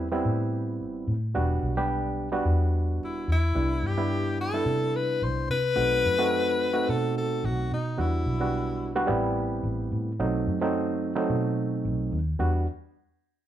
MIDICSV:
0, 0, Header, 1, 4, 480
1, 0, Start_track
1, 0, Key_signature, 1, "minor"
1, 0, Tempo, 552486
1, 1179, Time_signature, 4, 2, 24, 8
1, 11705, End_track
2, 0, Start_track
2, 0, Title_t, "Tenor saxophone"
2, 0, Program_c, 0, 66
2, 2646, Note_on_c, 0, 64, 69
2, 2855, Note_off_c, 0, 64, 0
2, 2885, Note_on_c, 0, 64, 89
2, 3364, Note_on_c, 0, 67, 90
2, 3377, Note_off_c, 0, 64, 0
2, 3827, Note_off_c, 0, 67, 0
2, 3832, Note_on_c, 0, 69, 97
2, 4308, Note_on_c, 0, 71, 91
2, 4321, Note_off_c, 0, 69, 0
2, 4551, Note_on_c, 0, 72, 89
2, 4564, Note_off_c, 0, 71, 0
2, 4780, Note_off_c, 0, 72, 0
2, 4785, Note_on_c, 0, 71, 114
2, 5989, Note_on_c, 0, 69, 89
2, 6002, Note_off_c, 0, 71, 0
2, 6223, Note_off_c, 0, 69, 0
2, 6237, Note_on_c, 0, 69, 84
2, 6474, Note_on_c, 0, 66, 77
2, 6487, Note_off_c, 0, 69, 0
2, 6706, Note_off_c, 0, 66, 0
2, 6722, Note_on_c, 0, 63, 83
2, 6954, Note_on_c, 0, 64, 75
2, 6968, Note_off_c, 0, 63, 0
2, 7907, Note_off_c, 0, 64, 0
2, 11705, End_track
3, 0, Start_track
3, 0, Title_t, "Reed electric piano"
3, 0, Program_c, 1, 4
3, 100, Note_on_c, 1, 55, 87
3, 101, Note_on_c, 1, 59, 80
3, 102, Note_on_c, 1, 60, 75
3, 107, Note_on_c, 1, 64, 92
3, 984, Note_off_c, 1, 55, 0
3, 985, Note_off_c, 1, 59, 0
3, 985, Note_off_c, 1, 60, 0
3, 987, Note_off_c, 1, 64, 0
3, 1169, Note_on_c, 1, 55, 83
3, 1170, Note_on_c, 1, 59, 77
3, 1172, Note_on_c, 1, 66, 93
3, 1174, Note_on_c, 1, 62, 81
3, 1513, Note_off_c, 1, 55, 0
3, 1514, Note_off_c, 1, 59, 0
3, 1515, Note_off_c, 1, 66, 0
3, 1516, Note_off_c, 1, 62, 0
3, 1539, Note_on_c, 1, 67, 91
3, 1540, Note_on_c, 1, 55, 79
3, 1540, Note_on_c, 1, 59, 75
3, 1542, Note_on_c, 1, 62, 76
3, 1983, Note_off_c, 1, 55, 0
3, 1983, Note_off_c, 1, 59, 0
3, 1983, Note_off_c, 1, 67, 0
3, 1984, Note_off_c, 1, 62, 0
3, 2012, Note_on_c, 1, 55, 83
3, 2014, Note_on_c, 1, 59, 78
3, 2019, Note_on_c, 1, 62, 76
3, 2021, Note_on_c, 1, 66, 92
3, 2899, Note_off_c, 1, 55, 0
3, 2900, Note_off_c, 1, 59, 0
3, 2902, Note_off_c, 1, 62, 0
3, 2903, Note_off_c, 1, 66, 0
3, 3083, Note_on_c, 1, 55, 68
3, 3085, Note_on_c, 1, 62, 64
3, 3088, Note_on_c, 1, 59, 63
3, 3088, Note_on_c, 1, 64, 74
3, 3429, Note_off_c, 1, 55, 0
3, 3430, Note_off_c, 1, 62, 0
3, 3432, Note_off_c, 1, 59, 0
3, 3432, Note_off_c, 1, 64, 0
3, 3452, Note_on_c, 1, 55, 65
3, 3454, Note_on_c, 1, 59, 63
3, 3455, Note_on_c, 1, 64, 77
3, 3456, Note_on_c, 1, 62, 62
3, 3899, Note_off_c, 1, 55, 0
3, 3900, Note_off_c, 1, 59, 0
3, 3900, Note_off_c, 1, 64, 0
3, 3901, Note_off_c, 1, 62, 0
3, 3940, Note_on_c, 1, 55, 67
3, 3942, Note_on_c, 1, 59, 64
3, 3944, Note_on_c, 1, 62, 64
3, 3945, Note_on_c, 1, 64, 77
3, 4823, Note_off_c, 1, 55, 0
3, 4824, Note_off_c, 1, 59, 0
3, 4825, Note_off_c, 1, 62, 0
3, 4825, Note_off_c, 1, 64, 0
3, 5002, Note_on_c, 1, 57, 71
3, 5002, Note_on_c, 1, 60, 65
3, 5003, Note_on_c, 1, 66, 78
3, 5006, Note_on_c, 1, 63, 62
3, 5349, Note_off_c, 1, 57, 0
3, 5349, Note_off_c, 1, 60, 0
3, 5349, Note_off_c, 1, 66, 0
3, 5351, Note_off_c, 1, 63, 0
3, 5373, Note_on_c, 1, 57, 82
3, 5375, Note_on_c, 1, 60, 74
3, 5375, Note_on_c, 1, 63, 74
3, 5379, Note_on_c, 1, 66, 93
3, 5820, Note_off_c, 1, 57, 0
3, 5821, Note_off_c, 1, 60, 0
3, 5821, Note_off_c, 1, 63, 0
3, 5823, Note_off_c, 1, 66, 0
3, 5850, Note_on_c, 1, 57, 74
3, 5850, Note_on_c, 1, 60, 66
3, 5851, Note_on_c, 1, 63, 64
3, 5852, Note_on_c, 1, 66, 80
3, 6739, Note_off_c, 1, 57, 0
3, 6739, Note_off_c, 1, 60, 0
3, 6739, Note_off_c, 1, 63, 0
3, 6740, Note_off_c, 1, 66, 0
3, 6928, Note_on_c, 1, 59, 61
3, 6929, Note_on_c, 1, 55, 70
3, 6932, Note_on_c, 1, 62, 65
3, 6935, Note_on_c, 1, 66, 78
3, 7273, Note_off_c, 1, 55, 0
3, 7273, Note_off_c, 1, 59, 0
3, 7275, Note_off_c, 1, 62, 0
3, 7276, Note_off_c, 1, 66, 0
3, 7297, Note_on_c, 1, 55, 68
3, 7301, Note_on_c, 1, 59, 65
3, 7301, Note_on_c, 1, 62, 61
3, 7305, Note_on_c, 1, 66, 74
3, 7743, Note_off_c, 1, 55, 0
3, 7745, Note_off_c, 1, 59, 0
3, 7745, Note_off_c, 1, 62, 0
3, 7747, Note_off_c, 1, 66, 0
3, 7779, Note_on_c, 1, 55, 80
3, 7779, Note_on_c, 1, 62, 78
3, 7782, Note_on_c, 1, 59, 83
3, 7785, Note_on_c, 1, 66, 99
3, 7868, Note_off_c, 1, 55, 0
3, 7871, Note_off_c, 1, 59, 0
3, 7879, Note_on_c, 1, 55, 84
3, 7881, Note_on_c, 1, 59, 77
3, 7886, Note_on_c, 1, 64, 91
3, 7887, Note_on_c, 1, 60, 77
3, 7894, Note_off_c, 1, 62, 0
3, 7897, Note_off_c, 1, 66, 0
3, 8781, Note_off_c, 1, 55, 0
3, 8783, Note_off_c, 1, 59, 0
3, 8785, Note_off_c, 1, 60, 0
3, 8785, Note_off_c, 1, 64, 0
3, 8858, Note_on_c, 1, 54, 84
3, 8860, Note_on_c, 1, 57, 78
3, 8860, Note_on_c, 1, 60, 78
3, 8862, Note_on_c, 1, 63, 91
3, 9199, Note_off_c, 1, 54, 0
3, 9199, Note_off_c, 1, 57, 0
3, 9200, Note_off_c, 1, 60, 0
3, 9201, Note_off_c, 1, 63, 0
3, 9221, Note_on_c, 1, 54, 76
3, 9223, Note_on_c, 1, 60, 78
3, 9224, Note_on_c, 1, 57, 74
3, 9227, Note_on_c, 1, 63, 91
3, 9665, Note_off_c, 1, 54, 0
3, 9666, Note_off_c, 1, 60, 0
3, 9667, Note_off_c, 1, 57, 0
3, 9668, Note_off_c, 1, 63, 0
3, 9691, Note_on_c, 1, 54, 82
3, 9692, Note_on_c, 1, 60, 78
3, 9694, Note_on_c, 1, 63, 92
3, 9696, Note_on_c, 1, 57, 80
3, 10581, Note_off_c, 1, 54, 0
3, 10581, Note_off_c, 1, 60, 0
3, 10582, Note_off_c, 1, 63, 0
3, 10583, Note_off_c, 1, 57, 0
3, 10765, Note_on_c, 1, 55, 77
3, 10767, Note_on_c, 1, 62, 70
3, 10769, Note_on_c, 1, 59, 72
3, 10771, Note_on_c, 1, 66, 87
3, 10995, Note_off_c, 1, 55, 0
3, 10996, Note_off_c, 1, 62, 0
3, 10997, Note_off_c, 1, 59, 0
3, 10998, Note_off_c, 1, 66, 0
3, 11705, End_track
4, 0, Start_track
4, 0, Title_t, "Fingered electric bass"
4, 0, Program_c, 2, 33
4, 0, Note_on_c, 2, 40, 84
4, 180, Note_off_c, 2, 40, 0
4, 218, Note_on_c, 2, 45, 93
4, 701, Note_off_c, 2, 45, 0
4, 701, Note_on_c, 2, 33, 87
4, 927, Note_off_c, 2, 33, 0
4, 934, Note_on_c, 2, 45, 96
4, 1163, Note_off_c, 2, 45, 0
4, 1182, Note_on_c, 2, 28, 97
4, 1407, Note_off_c, 2, 28, 0
4, 1413, Note_on_c, 2, 35, 92
4, 2100, Note_off_c, 2, 35, 0
4, 2130, Note_on_c, 2, 40, 90
4, 2605, Note_off_c, 2, 40, 0
4, 2605, Note_on_c, 2, 28, 89
4, 2837, Note_off_c, 2, 28, 0
4, 2849, Note_on_c, 2, 40, 89
4, 3080, Note_off_c, 2, 40, 0
4, 3091, Note_on_c, 2, 36, 95
4, 3321, Note_off_c, 2, 36, 0
4, 3329, Note_on_c, 2, 43, 93
4, 4018, Note_off_c, 2, 43, 0
4, 4047, Note_on_c, 2, 48, 94
4, 4533, Note_on_c, 2, 36, 82
4, 4547, Note_off_c, 2, 48, 0
4, 4762, Note_off_c, 2, 36, 0
4, 4777, Note_on_c, 2, 48, 93
4, 5004, Note_off_c, 2, 48, 0
4, 5014, Note_on_c, 2, 35, 101
4, 5242, Note_off_c, 2, 35, 0
4, 5263, Note_on_c, 2, 42, 87
4, 5945, Note_off_c, 2, 42, 0
4, 5985, Note_on_c, 2, 47, 98
4, 6461, Note_on_c, 2, 35, 87
4, 6474, Note_off_c, 2, 47, 0
4, 6687, Note_off_c, 2, 35, 0
4, 6705, Note_on_c, 2, 47, 88
4, 6929, Note_off_c, 2, 47, 0
4, 6936, Note_on_c, 2, 40, 100
4, 7164, Note_off_c, 2, 40, 0
4, 7178, Note_on_c, 2, 35, 89
4, 7864, Note_off_c, 2, 35, 0
4, 7897, Note_on_c, 2, 33, 100
4, 8353, Note_off_c, 2, 33, 0
4, 8369, Note_on_c, 2, 33, 88
4, 8601, Note_off_c, 2, 33, 0
4, 8618, Note_on_c, 2, 45, 94
4, 8846, Note_off_c, 2, 45, 0
4, 8858, Note_on_c, 2, 35, 103
4, 9086, Note_off_c, 2, 35, 0
4, 9098, Note_on_c, 2, 42, 86
4, 9784, Note_off_c, 2, 42, 0
4, 9814, Note_on_c, 2, 47, 99
4, 10294, Note_on_c, 2, 35, 86
4, 10307, Note_off_c, 2, 47, 0
4, 10524, Note_off_c, 2, 35, 0
4, 10529, Note_on_c, 2, 39, 89
4, 10761, Note_off_c, 2, 39, 0
4, 10767, Note_on_c, 2, 40, 84
4, 10996, Note_off_c, 2, 40, 0
4, 11705, End_track
0, 0, End_of_file